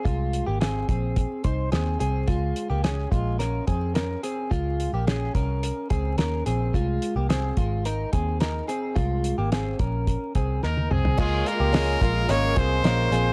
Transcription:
<<
  \new Staff \with { instrumentName = "Trumpet" } { \time 4/4 \key des \lydian \tempo 4 = 108 r1 | r1 | r1 | r1 |
r2. bes'8 aes'8 | aes'8 bes'4. des''8 c''4. | }
  \new Staff \with { instrumentName = "Clean electric guitar" } { \time 4/4 \key des \lydian <aes f'>8. <bes g'>16 <c' aes'>8 <c' aes'>4 <ees' c''>8 <c' aes'>8 <c' aes'>8 | <aes f'>8. <bes g'>16 <des' aes'>8 <aes f'>8 <des' bes'>8 <c' aes'>8 <des' bes'>8 <c' aes'>8 | <aes f'>8. <bes g'>16 <des' aes'>8 <des' bes'>4 <c' aes'>8 <des' bes'>8 <c' aes'>8 | <aes f'>8. <bes g'>16 <c' aes'>8 <aes f'>8 <ees' bes'>8 <c' aes'>8 <ees' bes'>8 <c' aes'>8 |
<aes f'>8. <bes g'>16 <c' aes'>8 <des' bes'>4 <c' aes'>8 <ees' bes'>8 <c' aes'>8 | <aes f'>8. <bes g'>16 <des' aes'>8 <aes f'>8 <des' bes'>8 <c' aes'>8 <des' bes'>8 <c' aes'>8 | }
  \new Staff \with { instrumentName = "Twelve-string acoustic guitar" } { \time 4/4 \key des \lydian r1 | r1 | r1 | r1 |
r1 | <des aes bes f'>8 <aes bes f'>8 <des aes bes f'>8 <aes bes f'>8 <des aes bes f'>8 <aes f'>8 <des aes bes f'>8 <aes bes f'>8 | }
  \new Staff \with { instrumentName = "Picked electric bass" } { \clef bass \time 4/4 \key des \lydian c,8. aes,,8. bes,,8. r16 c,8 ees,8 c,8 | des,8 r16 des,8. bes,,4 f,4 r8 | des,8. bes,,8. c,8. r16 des,8 ees,8 bes,,8 | c,8 r16 c,8. aes,,4 ees,4 r8 |
c,8. aes,,8. bes,,8. r16 c,8 ees,8 c,8 | des,8 r16 des,8. bes,,8 aes,,8 c,8 bes,,8 bes,,8 | }
  \new DrumStaff \with { instrumentName = "Drums" } \drummode { \time 4/4 <hh bd>8 hh8 <hh sn>8 <hh bd>8 <hh bd>8 <hh bd>8 <hh sn>8 hh8 | <hh bd>8 hh8 <hh sn>8 <hh bd>8 <hh sn>8 <hh bd>8 <hh sn>8 hh8 | <hh bd>8 hh8 <hh sn>8 <hh bd>8 hh8 <hh bd>8 <hh sn>8 hh8 | <hh bd>8 hh8 <hh sn>8 <hh bd>8 hh8 <hh bd>8 <hh sn>8 hh8 |
<hh bd>8 hh8 <hh sn>8 <hh bd>8 <hh bd>8 <hh bd>8 sn16 tommh16 toml16 tomfh16 | <cymc bd>8 <hho hhp>8 <hho hhp sn>8 <hho hhp bd>8 <hho hhp sn>8 <hho hhp bd>8 <hho hhp sn>8 <hho hhp>8 | }
>>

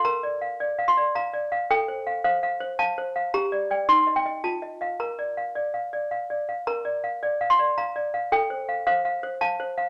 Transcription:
\new Staff \with { instrumentName = "Toy piano" } { \time 3/4 \key bes \major \tempo 4 = 109 << { bes''4. c'''8 bes''4 | g''4 f''4 a''4 | bes''4 c'''8 g''8 a''4 | bes''2~ bes''8 r8 |
bes''4. c'''8 bes''4 | g''4 f''4 a''4 | } \\ { \tuplet 3/2 { bes'8 d''8 f''8 d''8 f''8 d''8 f''8 d''8 f''8 } | \tuplet 3/2 { a'8 c''8 f''8 c''8 f''8 c''8 f''8 c''8 f''8 } | \tuplet 3/2 { g'8 d''8 <d'' g''>8 ees'8 ees''8 <ees'' g''>8 f'8 ees''8 <ees'' f''>8 } | \tuplet 3/2 { bes'8 d''8 f''8 d''8 f''8 d''8 f''8 d''8 f''8 } |
\tuplet 3/2 { bes'8 d''8 f''8 d''8 f''8 d''8 f''8 d''8 f''8 } | \tuplet 3/2 { a'8 c''8 f''8 c''8 f''8 c''8 f''8 c''8 f''8 } | } >> }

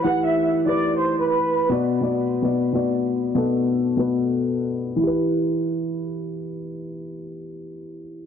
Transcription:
<<
  \new Staff \with { instrumentName = "Violin section" } { \time 4/4 \key e \minor \tempo 4 = 145 fis''8 e''8 r8 d''8. c''8 b'16 b'4 | r1 | r1 | r1 |
r1 | }
  \new Staff \with { instrumentName = "Grand piano" } { \time 4/4 \key e \minor <e e' g' b'>4 r8 <e e' g' b'>4. r4 | <b, b fis' d''>8 r16 <b, b fis' d''>8. r16 <b, b fis' d''>8 r16 <b, b fis' d''>4 r8 | <b, b fis' a'>4 r8 <b, b fis' b'>4. r4 | <e e' g' b'>1~ |
<e e' g' b'>1 | }
>>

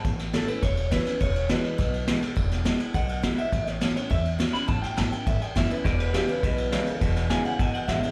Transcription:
<<
  \new Staff \with { instrumentName = "Clean electric guitar" } { \time 4/4 \key e \major \tempo 4 = 207 a''8 r8 a'8 b'8 cis''4 b'4 | cis''4 b'2. | r2 fis''4. e''8~ | e''8 cis''4 cis''8 e''8 r4 b''8 |
a''8 g''8 a''8 g''8 e''8 g''8 e''8 b'8 | d''8 b'8 g'8 b'8 b'2 | r4 gis''8 fis''8 gis''8 fis''8 e''8 r8 | }
  \new Staff \with { instrumentName = "Steel-string acoustic guitar" } { \time 4/4 \key e \major << { r4 <e a cis' e'>8 <cis' e'>8 r4 <e a cis' e'>8 <cis' e'>8 | r4 <e gis b e'>4 r4 <e gis b e'>8 <b e'>8 | r4 <e gis b e'>8 <b e'>8 r4 <e gis b e'>8 <b e'>8 | r4 <e a cis' e'>8 <cis' e'>8 r4 <e a cis' e'>8 <cis' e'>8 |
r4 <e a cis' e'>8 <cis' e'>8 r4 <e a cis' e'>8 <cis' e'>8 | r4 <e gis b e'>8 <b e'>8 r4 <e gis b e'>8 <b e'>8 | r4 <e gis b e'>8 <b e'>8 r4 <e gis b e'>8 <b e'>8 | } \\ { a,2 e,2 | e,2 b,2 | e,2 b,2 | a,2 e,2 |
a,2 e,2 | e,2 b,2 | e,2 b,2 | } >> }
  \new Staff \with { instrumentName = "Clean electric guitar" } { \clef bass \time 4/4 \key e \major r1 | r1 | r1 | r1 |
r1 | <e, b,>4 <e, cis>4 <e, b,>4 <e, cis>4 | <e, b,>4 <e, cis>4 <e, b,>4 <e, cis>4 | }
  \new Staff \with { instrumentName = "Upright bass" } { \clef bass \time 4/4 \key e \major a,,4. r8 e,,4. r8 | e,,4. r8 b,,4. r8 | e,,4. r8 b,,4. r8 | a,,4. r8 e,4. r8 |
a,,8 r8 a,,8 r8 gis,,8 r8 fis,,8 r8 | e,,4. r8 b,,4. r8 | e,,4. r8 gis,,8 r8 a,,8 r8 | }
  \new DrumStaff \with { instrumentName = "Drums" } \drummode { \time 4/4 <bd cymr sn>8 <cymr sn>8 <cymr sn>8 cymr8 <bd cymr sn>8 cymr8 <bd cymr sn>8 <cymr sn>8 | <bd cymr>8 cymr8 <cymr sn>8 cymr8 <bd cymr sn>8 cymr8 <cymr sn>8 <cymr sn>8 | <bd cymr>8 <cymr sn>8 <cymr sn>8 cymr8 <bd cymr sn>8 cymr8 <bd cymr sn>8 cymr8 | <bd cymr sn>8 <cymr sn>8 <cymr sn>8 cymr8 <bd cymr>8 cymr8 <cymr sn>8 <cymr sn>8 |
<bd cymr>8 <cymr sn>8 <cymr sn>8 cymr8 <bd cymr>8 cymr8 <bd cymr sn>8 cymr8 | <bd cymr sn>8 cymr8 <cymr sn>8 cymr8 <bd cymr sn>8 cymr8 <cymr sn>8 cymr8 | <bd cymr>8 <cymr sn>8 <cymr sn>8 cymr8 <bd cymr>8 cymr8 <bd cymr sn>8 <cymr sn>8 | }
>>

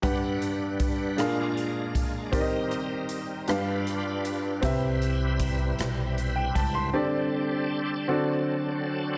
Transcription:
<<
  \new Staff \with { instrumentName = "Upright piano" } { \time 6/8 \key g \major \tempo 4. = 52 << { r2. | r2. | r2 r16 g''16 a''16 c'''16~ | c'''16 r2 r8. | } \\ { <d' g' b' fis''>4. <d' aes' bes' f''>4. | <c' g' bes' d'' ees''>4. <d' g' b' f''>4. | <c' g' b' e''>2. | <c' g' a' d''>4. <c' fis' a' d''>4. | } >> }
  \new Staff \with { instrumentName = "Upright piano" } { \clef bass \time 6/8 \key g \major g,4. bes,4. | ees4. g,4. | c4. r4. | d4. d4. | }
  \new Staff \with { instrumentName = "Tonewheel organ" } { \time 6/8 \key g \major <g d' b' fis''>4. <aes d' f' a' bes'>4. | <g c' ees' bes'>4. <d' f' b'>4. | <g c' e' b'>2. | <g c' d' a'>4. <fis c' d' a'>4. | }
  \new Staff \with { instrumentName = "Upright bass" } { \clef bass \time 6/8 \key g \major r2. | r2. | c,4. b,,4 cis,8 | r2. | }
  \new DrumStaff \with { instrumentName = "Drums" } \drummode { \time 6/8 <hh bd>8 hh8 <hh bd>8 <hh ss>8 hh8 <hh bd>8 | <hh bd>8 hh8 hh8 <hh ss>8 hh8 hh8 | <hh bd>8 hh8 <hh bd>8 <hh ss>8 hh8 <hh bd>8 | r4. r4. | }
>>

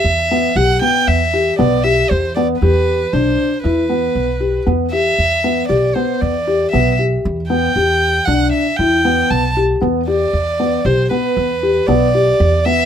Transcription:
<<
  \new Staff \with { instrumentName = "Violin" } { \time 5/4 \key e \minor \tempo 4 = 117 e''4 fis''8 g''8 e''4 d''8 e''8 c''8 d''8 | b'4 c''4 b'2 r8 e''8~ | e''4 d''8 c''8 d''4 e''8 r4 g''8~ | g''4 fis''8 e''8 g''4 a''8 r4 d''8~ |
d''4 c''8 b'4. d''4. e''8 | }
  \new Staff \with { instrumentName = "Felt piano" } { \time 5/4 \key e \minor r8 b8 g'8 b4 g'8 b8 g'4 b8 | g'4 d'4 e'8 b4 g'8 b8 g'8 | r8 b8 g'8 b4 g'8 b8 g'4 b8 | g'4 d'4 e'8 b4 g'8 b8 g'8 |
r8 b8 g'8 b4 g'8 b8 g'4 b8 | }
  \new Staff \with { instrumentName = "Upright bass" } { \clef bass \time 5/4 \key e \minor e,4 b,,8 r8 e,4 b,,4 e,4 | e,4 b,,8 r8 e,4 b,,4 e,4 | e,4 b,,8 r8 e,4 b,,4 e,4 | e,4 b,,8 r8 e,4 b,,4 e,4 |
e,4 b,,8 r8 e,4 b,,4 e,4 | }
>>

